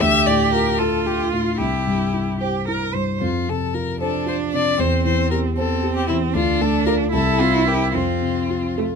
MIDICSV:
0, 0, Header, 1, 4, 480
1, 0, Start_track
1, 0, Time_signature, 6, 3, 24, 8
1, 0, Key_signature, -1, "major"
1, 0, Tempo, 534283
1, 3360, Tempo, 522193
1, 6720, Tempo, 548446
1, 8084, End_track
2, 0, Start_track
2, 0, Title_t, "Violin"
2, 0, Program_c, 0, 40
2, 7, Note_on_c, 0, 76, 100
2, 234, Note_on_c, 0, 74, 77
2, 248, Note_off_c, 0, 76, 0
2, 467, Note_off_c, 0, 74, 0
2, 476, Note_on_c, 0, 70, 71
2, 709, Note_on_c, 0, 69, 61
2, 722, Note_off_c, 0, 70, 0
2, 953, Note_on_c, 0, 67, 57
2, 966, Note_off_c, 0, 69, 0
2, 1179, Note_off_c, 0, 67, 0
2, 1185, Note_on_c, 0, 65, 55
2, 1418, Note_on_c, 0, 67, 65
2, 1432, Note_off_c, 0, 65, 0
2, 2150, Note_off_c, 0, 67, 0
2, 2881, Note_on_c, 0, 65, 60
2, 3133, Note_on_c, 0, 69, 59
2, 3146, Note_off_c, 0, 65, 0
2, 3357, Note_on_c, 0, 70, 58
2, 3371, Note_off_c, 0, 69, 0
2, 3599, Note_off_c, 0, 70, 0
2, 3603, Note_on_c, 0, 69, 58
2, 3837, Note_off_c, 0, 69, 0
2, 3852, Note_on_c, 0, 72, 57
2, 3926, Note_off_c, 0, 72, 0
2, 4085, Note_on_c, 0, 74, 71
2, 4330, Note_on_c, 0, 72, 72
2, 4344, Note_off_c, 0, 74, 0
2, 4559, Note_off_c, 0, 72, 0
2, 4564, Note_on_c, 0, 72, 68
2, 4794, Note_off_c, 0, 72, 0
2, 4799, Note_on_c, 0, 70, 69
2, 4873, Note_off_c, 0, 70, 0
2, 5045, Note_on_c, 0, 69, 69
2, 5392, Note_off_c, 0, 69, 0
2, 5400, Note_on_c, 0, 67, 71
2, 5504, Note_off_c, 0, 67, 0
2, 5510, Note_on_c, 0, 64, 64
2, 5583, Note_off_c, 0, 64, 0
2, 5751, Note_on_c, 0, 65, 78
2, 5995, Note_on_c, 0, 69, 73
2, 6009, Note_off_c, 0, 65, 0
2, 6223, Note_off_c, 0, 69, 0
2, 6229, Note_on_c, 0, 70, 67
2, 6302, Note_off_c, 0, 70, 0
2, 6477, Note_on_c, 0, 69, 75
2, 6725, Note_on_c, 0, 65, 69
2, 6738, Note_off_c, 0, 69, 0
2, 6964, Note_on_c, 0, 67, 64
2, 6977, Note_off_c, 0, 65, 0
2, 7198, Note_off_c, 0, 67, 0
2, 7204, Note_on_c, 0, 65, 58
2, 8084, Note_off_c, 0, 65, 0
2, 8084, End_track
3, 0, Start_track
3, 0, Title_t, "Cello"
3, 0, Program_c, 1, 42
3, 1, Note_on_c, 1, 67, 78
3, 707, Note_on_c, 1, 65, 60
3, 720, Note_off_c, 1, 67, 0
3, 1418, Note_off_c, 1, 65, 0
3, 1424, Note_on_c, 1, 64, 48
3, 2091, Note_off_c, 1, 64, 0
3, 2160, Note_on_c, 1, 67, 48
3, 2384, Note_off_c, 1, 67, 0
3, 2410, Note_on_c, 1, 70, 45
3, 2645, Note_on_c, 1, 72, 43
3, 2658, Note_off_c, 1, 70, 0
3, 2885, Note_off_c, 1, 72, 0
3, 3595, Note_on_c, 1, 62, 59
3, 4310, Note_on_c, 1, 60, 49
3, 4324, Note_off_c, 1, 62, 0
3, 5026, Note_off_c, 1, 60, 0
3, 5031, Note_on_c, 1, 60, 63
3, 5748, Note_on_c, 1, 62, 65
3, 5762, Note_off_c, 1, 60, 0
3, 6455, Note_off_c, 1, 62, 0
3, 6460, Note_on_c, 1, 64, 74
3, 7197, Note_on_c, 1, 60, 53
3, 7211, Note_off_c, 1, 64, 0
3, 7873, Note_off_c, 1, 60, 0
3, 7928, Note_on_c, 1, 57, 44
3, 7998, Note_off_c, 1, 57, 0
3, 8084, End_track
4, 0, Start_track
4, 0, Title_t, "Grand piano"
4, 0, Program_c, 2, 0
4, 0, Control_c, 2, 64, 127
4, 15, Note_on_c, 2, 38, 55
4, 18, Control_c, 2, 64, 0
4, 167, Control_c, 2, 64, 127
4, 249, Note_on_c, 2, 45, 43
4, 484, Note_on_c, 2, 65, 47
4, 616, Note_off_c, 2, 45, 0
4, 717, Note_on_c, 2, 69, 45
4, 854, Note_off_c, 2, 65, 0
4, 952, Note_on_c, 2, 65, 36
4, 1093, Note_off_c, 2, 69, 0
4, 1197, Note_on_c, 2, 45, 32
4, 1333, Note_off_c, 2, 65, 0
4, 1396, Note_off_c, 2, 38, 0
4, 1430, Note_on_c, 2, 36, 37
4, 1432, Note_off_c, 2, 45, 0
4, 1444, Control_c, 2, 64, 0
4, 1589, Control_c, 2, 64, 127
4, 1679, Note_on_c, 2, 43, 32
4, 1920, Note_on_c, 2, 64, 34
4, 2062, Note_off_c, 2, 43, 0
4, 2163, Note_on_c, 2, 72, 38
4, 2305, Note_off_c, 2, 64, 0
4, 2408, Note_on_c, 2, 64, 31
4, 2549, Note_off_c, 2, 72, 0
4, 2643, Note_on_c, 2, 43, 29
4, 2793, Note_off_c, 2, 64, 0
4, 2851, Note_off_c, 2, 36, 0
4, 2885, Note_off_c, 2, 43, 0
4, 2886, Note_on_c, 2, 41, 41
4, 2901, Control_c, 2, 64, 0
4, 3052, Control_c, 2, 64, 127
4, 3129, Note_on_c, 2, 48, 34
4, 3364, Note_on_c, 2, 65, 38
4, 3507, Note_off_c, 2, 48, 0
4, 3605, Note_on_c, 2, 72, 42
4, 3746, Note_off_c, 2, 65, 0
4, 3840, Note_on_c, 2, 65, 35
4, 3986, Note_off_c, 2, 72, 0
4, 4092, Note_on_c, 2, 48, 35
4, 4222, Note_off_c, 2, 65, 0
4, 4283, Note_off_c, 2, 41, 0
4, 4324, Note_on_c, 2, 40, 42
4, 4325, Note_off_c, 2, 48, 0
4, 4337, Control_c, 2, 64, 0
4, 4504, Control_c, 2, 64, 127
4, 4565, Note_on_c, 2, 52, 35
4, 4805, Note_on_c, 2, 67, 41
4, 4946, Note_off_c, 2, 52, 0
4, 5047, Note_on_c, 2, 72, 50
4, 5184, Note_off_c, 2, 67, 0
4, 5278, Note_on_c, 2, 67, 41
4, 5424, Note_off_c, 2, 72, 0
4, 5530, Note_on_c, 2, 52, 40
4, 5660, Note_off_c, 2, 67, 0
4, 5720, Note_off_c, 2, 40, 0
4, 5755, Note_on_c, 2, 38, 49
4, 5762, Note_off_c, 2, 52, 0
4, 5774, Control_c, 2, 64, 0
4, 5914, Control_c, 2, 64, 127
4, 6001, Note_on_c, 2, 57, 40
4, 6232, Note_on_c, 2, 65, 49
4, 6235, Note_on_c, 2, 69, 52
4, 6380, Note_off_c, 2, 57, 0
4, 6450, Note_off_c, 2, 65, 0
4, 6451, Note_off_c, 2, 69, 0
4, 6452, Note_off_c, 2, 38, 0
4, 6476, Note_on_c, 2, 36, 58
4, 6490, Control_c, 2, 64, 0
4, 6657, Control_c, 2, 64, 127
4, 6724, Note_on_c, 2, 60, 39
4, 6961, Note_on_c, 2, 64, 33
4, 6963, Note_on_c, 2, 70, 37
4, 7105, Note_off_c, 2, 60, 0
4, 7177, Note_off_c, 2, 64, 0
4, 7178, Note_off_c, 2, 70, 0
4, 7180, Note_off_c, 2, 36, 0
4, 7197, Note_on_c, 2, 41, 38
4, 7218, Control_c, 2, 64, 0
4, 7380, Control_c, 2, 64, 127
4, 7442, Note_on_c, 2, 48, 29
4, 7688, Note_on_c, 2, 65, 38
4, 7827, Note_off_c, 2, 48, 0
4, 7931, Note_on_c, 2, 69, 36
4, 8067, Note_off_c, 2, 65, 0
4, 8084, Note_off_c, 2, 41, 0
4, 8084, Note_off_c, 2, 69, 0
4, 8084, End_track
0, 0, End_of_file